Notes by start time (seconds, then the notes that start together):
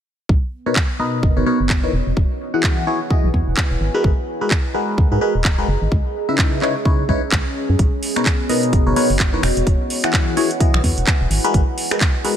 0.29 B1 B3, kick
0.58 F#4
0.66 B2 D#4 A#4 B4 C#5
0.76 kick, clap
0.82 C#5
0.97 B2 D#4 A#4 B4 D#5
1.23 F#1, kick
1.37 F#1 B2 D#4 A#4 B4 C#5
1.46 B2 D#4 A#4 B4 C#5
1.60 F#1
1.70 kick, clap
1.84 E3 D#4 A#4 B4 C#5
1.93 E1 E4
2.07 E1 B4
2.17 F#5, kick
2.54 E3 E4 F#4 G#4 F#5 G#5
2.63 kick, clap
2.87 E3 E4 F#4 G#4 C#5
3.10 E3 E4 F#4 G#4 D#5, kick
3.24 B1
3.34 E2, kick
3.48 E1
3.57 kick, clap
3.71 E1
3.81 G#1 G#4
3.94 G#3 F#4 G#4 A#4 B4 A#5
4.04 G#1, kick
4.15 D#5
4.41 G#3 F#4 G#4 A#4 B4
4.51 kick, clap
4.74 G#3 F#4 G#4 A#4 B4
4.98 D#2, kick
5.12 G#2 G#3 F#4 G#4 A#4 B4
5.21 G#3 F#4 G#4 A#4 B4
5.35 D#1
5.44 kick, clap
5.58 G#3 F#4 G#4 A#4 B4
5.68 F#1
5.82 G#1
5.92 C#2 C#4, kick
6.18 C#5
6.29 C#3 D#4 E4 B4 E5
6.38 kick, clap
6.62 C#3 D#4 E4 B4 C#5, clap
6.85 C#3 D#4 E4 B4 C#5, kick
7.09 C#2 C#3 D#4 E4 B4 C#5, kick
7.32 C#2, kick, clap
7.69 F#2
7.79 B1 B3, kick, closed hi-hat
7.94 C#5
8.03 F#4, open hi-hat
8.16 B2 D#4 A#4 B4 C#5, finger snap, closed hi-hat
8.26 kick, clap, closed hi-hat
8.49 B2 D#4 A#4 B4 D#5, open hi-hat
8.53 D#5
8.63 closed hi-hat
8.73 F#1, kick, closed hi-hat
8.87 F#1 B2 D#4 A#4 B4 C#5
8.96 B2 D#4 A#4 B4 C#5, open hi-hat
9.10 F#1, open hi-hat
9.19 kick, clap, closed hi-hat
9.34 E3 D#4 A#4 B4 C#5
9.43 E1 E4, finger snap, open hi-hat
9.57 E1 B4, closed hi-hat
9.66 E1 F#5, kick, closed hi-hat
9.84 G#5
9.90 open hi-hat
10.04 E3 E4 F#4 G#4 F#5, finger snap, closed hi-hat
10.13 kick, clap, closed hi-hat
10.37 E3 E4 F#4 G#4 C#5, open hi-hat
10.51 closed hi-hat
10.60 E3 E4 F#4 G#4 D#5, kick, closed hi-hat
10.74 B1, finger snap
10.84 E2, kick, open hi-hat
10.97 E1, closed hi-hat
11.07 kick, clap, closed hi-hat
11.21 E1
11.31 G#1 G#4, open hi-hat
11.44 G#3 F#4 G#4 A#4 B4 D#5, closed hi-hat
11.54 G#1, kick, closed hi-hat
11.78 open hi-hat
11.91 G#3 F#4 G#4 A#4 B4 A#5, finger snap, closed hi-hat
12.01 kick, clap, closed hi-hat
12.25 G#3 F#4 G#4 A#4 B4, open hi-hat